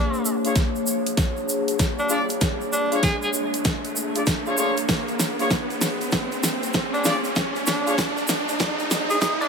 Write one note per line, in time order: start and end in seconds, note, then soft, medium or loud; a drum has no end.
0.00 9.48 A#3 medium
0.00 0.37 D4 loud
0.00 9.48 D4 medium
0.00 9.48 G#4 medium
0.00 9.48 C#5 loud
0.00 riser medium
0.14 shaker soft
0.25 shaker loud
0.45 0.54 D4 medium
0.45 0.54 F4 medium
0.45 0.54 G#4 medium
0.45 0.54 C#5 medium
0.45 closed hi-hat medium
0.45 shaker soft
0.56 kick loud
0.56 snare medium
0.56 closed hi-hat medium
0.56 shaker medium
0.76 shaker soft
0.87 shaker loud
1.06 closed hi-hat medium
1.06 shaker soft
1.17 kick loud
1.17 snare medium
1.17 closed hi-hat medium
1.17 shaker soft
1.37 shaker soft
1.49 shaker medium
1.68 closed hi-hat medium
1.68 shaker soft
1.79 kick medium
1.79 snare medium
1.79 closed hi-hat medium
1.79 shaker medium
1.99 2.20 D4 medium
1.99 shaker soft
2.09 2.20 D4 loud
2.09 2.20 F4 medium
2.09 2.20 G#4 medium
2.09 2.20 D5 loud
2.09 shaker medium
2.29 closed hi-hat soft
2.29 shaker soft
2.41 kick medium
2.41 snare medium
2.41 closed hi-hat medium
2.41 shaker medium
2.61 shaker soft
2.72 2.97 D4 loud
2.72 shaker medium
2.92 3.01 D4 medium
2.92 3.01 F4 medium
2.92 3.01 G#4 medium
2.92 3.01 C#5 medium
2.92 closed hi-hat soft
2.92 shaker soft
3.03 3.16 G#4 medium
3.03 kick loud
3.03 snare medium
3.03 closed hi-hat medium
3.03 shaker soft
3.22 3.30 G#4 medium
3.22 shaker soft
3.33 shaker medium
3.54 closed hi-hat soft
3.54 shaker soft
3.65 kick loud
3.65 snare medium
3.65 closed hi-hat medium
3.65 shaker soft
3.85 closed hi-hat soft
3.85 shaker soft
3.96 shaker medium
4.15 4.21 D4 medium
4.15 4.21 F4 medium
4.15 4.21 G#4 medium
4.15 4.21 D5 medium
4.15 closed hi-hat medium
4.15 shaker soft
4.26 kick loud
4.26 snare medium
4.26 closed hi-hat medium
4.26 shaker soft
4.46 4.56 D4 medium
4.46 4.56 F4 medium
4.46 4.56 G#4 medium
4.46 4.56 C#5 loud
4.46 shaker soft
4.58 4.74 D4 medium
4.58 4.74 F4 medium
4.58 4.73 G#4 medium
4.58 4.74 C#5 loud
4.58 shaker loud
4.77 closed hi-hat soft
4.77 shaker soft
4.89 kick medium
4.89 snare medium
4.89 open hi-hat soft
4.89 shaker soft
5.08 open hi-hat soft
5.08 shaker soft
5.20 snare medium
5.20 open hi-hat medium
5.20 shaker medium
5.39 5.48 D4 medium
5.39 5.48 F4 medium
5.39 5.48 G#4 medium
5.39 5.48 C#5 medium
5.39 open hi-hat soft
5.39 shaker soft
5.50 kick loud
5.50 snare medium
5.50 open hi-hat soft
5.50 shaker soft
5.70 open hi-hat soft
5.70 shaker soft
5.81 snare medium
5.81 open hi-hat medium
5.81 shaker loud
6.01 open hi-hat soft
6.01 shaker soft
6.12 kick loud
6.12 snare medium
6.12 open hi-hat soft
6.12 shaker soft
6.32 open hi-hat soft
6.32 shaker soft
6.43 snare medium
6.43 open hi-hat medium
6.43 shaker loud
6.63 open hi-hat soft
6.63 shaker soft
6.73 kick loud
6.73 snare medium
6.73 open hi-hat soft
6.73 shaker soft
6.94 7.14 D4 medium
6.94 open hi-hat soft
6.94 shaker soft
7.04 7.15 D4 loud
7.04 7.15 F4 medium
7.04 7.15 G#4 loud
7.04 7.15 D5 loud
7.04 snare medium
7.04 open hi-hat medium
7.04 shaker medium
7.24 open hi-hat soft
7.24 shaker soft
7.36 kick medium
7.36 snare medium
7.36 open hi-hat soft
7.36 shaker soft
7.55 open hi-hat soft
7.55 shaker soft
7.67 7.92 D4 medium
7.67 snare medium
7.67 open hi-hat medium
7.67 shaker medium
7.87 7.96 D4 medium
7.87 7.96 F4 medium
7.87 7.96 G#4 medium
7.87 7.96 C#5 medium
7.87 open hi-hat soft
7.87 shaker soft
7.98 kick loud
7.98 snare medium
7.98 open hi-hat soft
7.98 shaker soft
8.17 open hi-hat soft
8.17 shaker soft
8.28 snare medium
8.28 open hi-hat medium
8.28 shaker medium
8.49 open hi-hat soft
8.49 shaker soft
8.60 kick loud
8.60 snare medium
8.60 open hi-hat soft
8.60 shaker soft
8.79 open hi-hat soft
8.79 shaker soft
8.91 snare medium
8.91 open hi-hat medium
8.91 shaker medium
9.10 9.18 G#4 medium
9.10 open hi-hat soft
9.10 shaker soft
9.21 9.34 G#4 medium
9.21 kick loud
9.21 snare medium
9.21 open hi-hat soft
9.21 shaker medium
9.41 9.48 D4 loud
9.41 open hi-hat soft
9.41 shaker soft